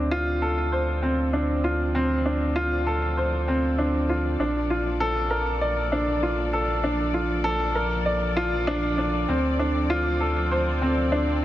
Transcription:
0.00 4.36 D2 medium
0.00 11.45 F3 medium
0.00 6.35 C4 medium
0.00 1.33 D4 medium
0.11 0.40 F4 medium
0.42 0.71 A4 medium
0.72 0.89 C5 medium
0.78 11.45 A4 medium
0.78 11.45 D5 medium
1.02 1.32 C4 medium
1.33 1.62 D4 medium
1.64 1.81 F4 medium
1.95 2.12 C4 medium
2.26 2.54 D4 medium
2.56 2.85 F4 medium
2.87 3.15 A4 medium
3.17 3.34 C5 medium
3.48 3.77 C4 medium
3.78 4.07 D4 medium
4.09 4.26 F4 medium
4.39 9.26 A#1 medium
4.39 4.57 D4 medium
4.70 9.29 A#3 medium
4.70 4.99 F4 medium
5.00 5.29 A4 medium
5.30 5.60 A#4 medium
5.61 5.79 D5 medium
5.92 6.21 D4 medium
6.23 6.52 F4 medium
6.53 6.71 A4 medium
6.84 7.01 D4 medium
7.14 7.43 F4 medium
7.44 7.74 A4 loud
7.75 8.05 A#4 medium
8.06 8.24 D5 medium
8.37 8.66 F4 loud
8.67 8.96 D4 medium
8.98 9.27 D4 medium
9.29 11.45 D2 medium
9.29 9.46 C4 medium
9.59 9.89 D4 medium
9.73 11.45 C4 medium
9.90 10.19 F4 medium
10.21 10.50 A4 medium
10.51 10.69 C5 medium
10.82 11.11 C4 medium
11.12 11.41 D4 medium

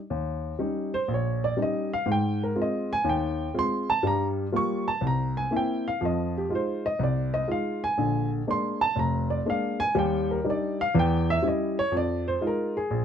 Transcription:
0.10 0.53 D#2 medium
0.59 0.93 G3 medium
0.59 0.94 C#4 soft
0.59 0.94 D#4 medium
0.94 1.09 C5 medium
1.08 1.51 A#1 medium
1.14 1.43 C#5 medium
1.44 1.58 D5 medium
1.57 1.92 G3 medium
1.57 1.92 C#4 soft
1.57 1.92 D#4 medium
1.62 1.92 D#5 medium
1.93 2.08 F5 medium
2.06 2.49 G#2 medium
2.12 2.41 G5 medium
2.44 2.57 A#4 medium
2.55 2.90 G#3 medium
2.55 2.90 C4 medium
2.55 2.90 F4 medium
2.62 2.91 D#5 medium
2.93 3.06 G#5 loud
3.04 3.47 D#2 medium
3.04 3.47 D#3 medium
3.09 3.53 G5 medium
3.54 3.89 G#3 medium
3.54 3.89 C4 soft
3.54 3.89 F4 medium
3.59 3.88 C6 loud
3.90 4.04 A5 loud
4.03 4.46 G2 medium
4.03 4.46 G3 medium
4.03 4.26 A#5 loud
4.52 4.87 G3 medium
4.52 4.87 A#3 medium
4.52 4.87 F4 medium
4.56 4.86 C#6 medium
4.88 5.02 A5 medium
5.01 5.44 C2 medium
5.07 5.36 A#5 medium
5.37 5.52 G#5 medium
5.51 5.85 A#3 medium
5.51 5.86 C4 soft
5.51 5.86 E4 medium
5.56 5.86 G5 medium
5.88 6.01 F5 medium
6.01 6.43 F2 medium
6.01 6.43 F3 medium
6.05 6.35 D#5 medium
6.37 6.51 G4 medium
6.49 6.84 G#3 medium
6.49 6.84 D#4 soft
6.49 6.84 F4 medium
6.55 6.84 C5 medium
6.86 7.00 D#5 loud
6.99 7.42 C2 medium
7.03 7.33 D5 medium
7.34 7.48 D#5 medium
7.48 7.82 G#3 medium
7.48 7.82 D#4 soft
7.48 7.83 F4 medium
7.48 7.82 F5 medium
7.84 8.28 G#5 loud
7.98 8.40 A#1 medium
7.98 8.41 D3 medium
8.47 8.81 G#3 medium
8.47 8.82 A#3 medium
8.47 8.82 D4 medium
8.47 8.81 C6 loud
8.81 8.96 A5 loud
8.96 9.38 F1 medium
8.96 9.29 A#5 medium
9.30 9.45 D5 medium
9.46 9.80 G#3 medium
9.46 9.80 A#3 soft
9.46 9.80 D4 medium
9.50 9.79 F5 medium
9.80 9.95 G#5 loud
9.95 10.37 D#2 medium
9.95 10.37 G3 medium
9.95 10.29 G5 medium
10.31 10.45 A#4 medium
10.45 10.79 G3 medium
10.45 10.79 D4 medium
10.45 10.79 D#4 medium
10.50 10.79 D5 medium
10.81 10.95 F5 loud
10.94 11.37 E2 medium
10.94 11.36 E3 medium
10.99 11.28 G5 loud
11.30 11.44 E5 loud
11.43 11.77 G3 medium
11.43 11.77 C#4 medium
11.43 11.77 E4 medium
11.48 11.77 D#5 medium
11.79 11.93 C#5 loud
11.92 12.34 F2 medium
11.97 12.26 D5 medium
12.28 12.42 C5 medium
12.41 12.76 G#3 medium
12.41 12.76 D#4 medium
12.41 12.76 F4 medium
12.47 12.76 A#4 medium
12.77 13.05 G#4 medium
12.91 13.05 A#1 medium

